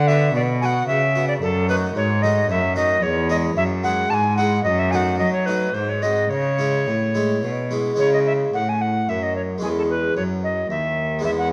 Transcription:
Already playing: D3
0.07 B3 F#4 E5
0.35 B2 D5
0.61 B3 F#4 G#5
0.65 F#5
0.87 C#3 E5
1.15 B3 F#4
1.27 D5
1.41 F#2 A4
1.69 A3 D#4 F#4 B4
1.95 G#2 C#5
2.22 A3 D#4 F#4 D#5
2.49 F#2 E5
2.76 A3 D#4 F#4 D#5
3.02 E2 C#5
3.29 G#3 E4 G#4 D#5
3.56 F#2 E5
3.83 G#3 E4 G#4 F#5
4.10 G#2 G#5 A5
4.37 G#3 E4 G#4 F#5
4.63 F#2 D#5
4.79 E5
4.90 A3 D#4 F#4 G#5
4.95 F#5
5.17 F#3 D#5
5.32 C#5
5.45 A3 D#4 F#4 B4
5.73 G#2 C5
5.88 C#5
6.02 G#3 C4 F#4 D#5
6.29 C#3 C#5
6.59 G#3 C#4 E4
6.87 A2
7.15 G#3 C#4 E4
7.43 B2
7.71 G#3 C#4 E4
7.94 G#3 C#4 E4
7.98 C#3 C#5
8.13 D#5
8.26 E5
8.54 A2 F#5
8.68 G#5
8.81 F#5
9.09 F#2 E5
9.22 D#5
9.35 C#5
9.58 G#3 C#4 E4 G#4
9.63 E2
9.77 A4
9.89 B4
10.16 F#2 C#5
10.43 D#5
10.70 D#2 E5
11.19 G#3 B3 E4
11.23 E2 E5
11.38 F#5

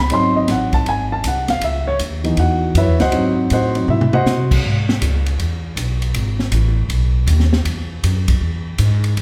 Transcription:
0.00 B5
0.10 G#1 F#3 C4 D#4 C6, ride
0.36 D#5
0.48 A1 F#5, snare, hi-hat pedal, ride
0.73 A5, kick, ride
0.86 G#1 G#5, ride
1.12 A5
1.24 C2 F#5, hi-hat pedal, ride
1.48 F5, snare, ride
1.61 C#2 E5, ride
1.88 C#5
1.99 D#2, hi-hat pedal, ride
2.24 E3 B3 D#4, ride
2.37 E2 F#4 F#5, ride
2.75 F#2 E4 B4 C#5 E5, hi-hat pedal, ride
2.88 E2
3.00 C#2 F#4 C5 D#5 F#5, snare, ride
3.12 G#2 F#3 C4 D#4, ride
3.50 A2 F#4 C5 D#5 F#5, hi-hat pedal, ride
3.75 F#3 C4 D#4, ride
3.88 G#2 E4 E5, mid tom
4.01 mid tom
4.13 F#4 C5 D#5 F#5, mid tom
4.26 C3, snare, hi-hat pedal
4.51 kick, crash
4.64 G#2
4.89 snare
5.02 C#2, hi-hat pedal, ride
5.26 ride
5.38 E2, ride
5.76 B1, hi-hat pedal, ride
6.02 ride
6.14 G#1, ride
6.39 snare
6.51 A1, hi-hat pedal, ride
6.89 B1, ride
7.27 D#2, hi-hat pedal, ride
7.40 snare
7.53 snare
7.65 E2, ride
8.04 F#2, hi-hat pedal, ride
8.28 kick, ride
8.41 E2
8.78 G#2, hi-hat pedal, ride
9.04 ride
9.17 C#3, ride

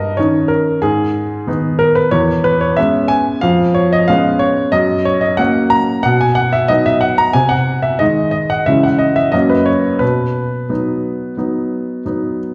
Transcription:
Already playing: G2 A#4 D#5
0.17 D#3 C#4 D#4 C#5
0.48 A#4
0.82 G#2 G#4
1.47 D#3 B3 D#4
1.79 A#4
1.95 B4
2.11 E2 C#5
2.44 B4
2.61 C#5
2.77 G#3 B3 C#4 E5
3.08 G#5
3.41 F2 F5
3.74 C#5
3.93 D#5
4.08 G#3 B3 C#4 F5
4.39 C#5
4.72 F#2 D#5
5.05 C#5
5.21 D#5
5.37 F#3 A#3 C#4 F#5
5.70 A#5
6.03 B2 F#5
6.21 G#5
6.35 F#5
6.53 E5
6.68 F#3 B3 D#4 D#5
6.86 E5
7.01 F#5
7.18 A#5
7.33 C3 G#5
7.49 F#5
7.82 E5
7.99 D#3 G#3 D#4 D#5
8.31 D#5
8.50 F#5
8.66 C#3 E3 G#3 C#4 E5
8.83 F#5
8.99 D#5
9.16 E5
9.32 F#2 F#3 A#3 C#4 D#5
9.50 B4
9.66 C#5
9.99 B2 B4
10.69 F#3 B3 D#4
11.37 F#3 B3 D#4
12.05 F#3 B3 D#4

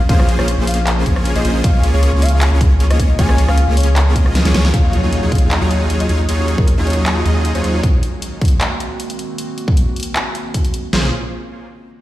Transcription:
Already playing: C#3 G#3 A#3 F4 C5
0.09 A#1 A#3 C#4 F4 G#4 C5 F5, kick, closed hi-hat
0.20 cross-stick
0.29 closed hi-hat
0.39 A#1 A#3 C#4 F4 G#4 C5 C#5, cross-stick
0.48 closed hi-hat
0.58 A#1 A#3 C#4 F4 G#4 C5
0.67 F5, closed hi-hat, open hi-hat
0.74 closed hi-hat
0.87 clap, closed hi-hat
1.06 A#1 A#3 C#4 F4 G#4 C#5, kick, closed hi-hat
1.16 cross-stick
1.25 closed hi-hat
1.36 A#1 A#3 C#4 F4 G#4 C5 D#5, closed hi-hat
1.45 A#1 A#3 C#4 F4 G#4 C5, closed hi-hat
1.64 C#2 F3 G#3 A#3 C#4 F4 G#4 C#5 F5, kick, closed hi-hat
1.83 closed hi-hat
1.93 C#2 A#3 C#4 F4 G#4 C#5
2.03 closed hi-hat
2.13 C#2 A#3 C#4 F4 G#4 C#5
2.22 F5, closed hi-hat, open hi-hat
2.29 closed hi-hat
2.41 clap, closed hi-hat
2.52 C#2 A#3 C#4 F4 G#4 C#5
2.61 kick, closed hi-hat
2.80 closed hi-hat
2.90 D#5, cross-stick, closed hi-hat
2.99 C#2 A#3 C#4 F4 G#4 C#5, kick, closed hi-hat
3.19 C#2 A#3 C#4 F4 G#4 C#5 G#5, kick, closed hi-hat
3.29 cross-stick
3.38 closed hi-hat
3.48 C#2 A#3 C#4 F4 G#4 C#5 F5, cross-stick
3.58 closed hi-hat
3.68 C#2 A#3 C#4 F4 G#4 C#5
3.77 C#5, closed hi-hat, open hi-hat
3.83 closed hi-hat
3.96 clap, closed hi-hat
4.16 C#2 A#3 C#4 F4 G#4 D#5, kick, closed hi-hat
4.26 cross-stick
4.35 snare, closed hi-hat
4.45 C#2 A#3 C#4 F4 G#4 C#5, snare, closed hi-hat
4.54 C#2 A#3 C#4 F4 G#4 C#5, snare, closed hi-hat
4.65 snare
4.74 D#2 D#3 F#3 G#3 C#4 D#4 F4 G#4 C#5 F5, kick, closed hi-hat, impact
4.93 closed hi-hat
5.03 D#2 F#3 D#4 F4 G#4 C#5
5.13 closed hi-hat
5.23 D#2 F#3 D#4 F4 G#4 C#5
5.32 F5, kick, closed hi-hat
5.35 closed hi-hat
5.38 closed hi-hat
5.51 clap, closed hi-hat
5.61 D#2 F#3 D#4 F4 G#4 C#5
5.71 closed hi-hat
5.90 closed hi-hat
6.00 D#5, closed hi-hat
6.09 D#2 F#3 D#4 F4 G#4 C#5, closed hi-hat
6.29 D#2 F#3 D#4 F4 G#4 C#5, closed hi-hat
6.48 closed hi-hat
6.58 D#2 F#3 D#4 F4 G#4 A#4 C#5, kick
6.68 closed hi-hat
6.77 D#2 F#3 D#4 F4 G#4 C#5
6.87 C#5, closed hi-hat
6.90 closed hi-hat
6.93 closed hi-hat
7.06 clap, closed hi-hat
7.25 D#2 F#3 D#4 F4 G#4 D#5, closed hi-hat
7.45 closed hi-hat
7.55 D#2 F#3 D#4 F4 G#4 C5 C#5, closed hi-hat
7.64 D#2 F#3 D#4 F4 G#4 C#5, closed hi-hat
7.83 A#3 C4 F#4, kick, closed hi-hat
8.03 closed hi-hat
8.22 closed hi-hat
8.41 kick, closed hi-hat
8.45 closed hi-hat
8.48 closed hi-hat
8.61 clap, closed hi-hat
8.80 closed hi-hat
9.00 closed hi-hat
9.10 closed hi-hat
9.19 closed hi-hat
9.38 closed hi-hat
9.58 closed hi-hat
9.68 kick
9.77 closed hi-hat
9.96 closed hi-hat
10.00 closed hi-hat
10.03 closed hi-hat
10.16 clap, closed hi-hat
10.35 closed hi-hat
10.54 kick, closed hi-hat
10.65 closed hi-hat
10.74 closed hi-hat
10.93 A#1 C#3 G#3 A#3 C4 C#4 F4 G#4 C5, snare, floor tom, open hi-hat

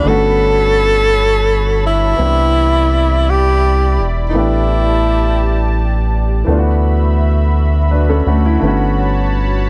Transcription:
Already playing: F#4 B5
0.02 G1 D3 A3 B3 C#5 A5
0.08 C#4 F#4 A4
1.86 E4
2.17 C2 E3 B3 C4 E4 D5
2.23 D4 G4
3.30 G4
3.98 E1
4.29 E3 D#4
4.33 A1 A3 B3 G4 A5
4.37 D4 E4 G4
6.44 D2 E3 A3 B3 F#4 E5 B5
6.51 D4 F4
6.59 F#4
7.91 D4 B4
8.09 C#4 A4
8.27 D2 A3 F#4
8.45 E4
8.60 G1 D3 A3 C#5 A5
8.64 B3 C#4 F#4

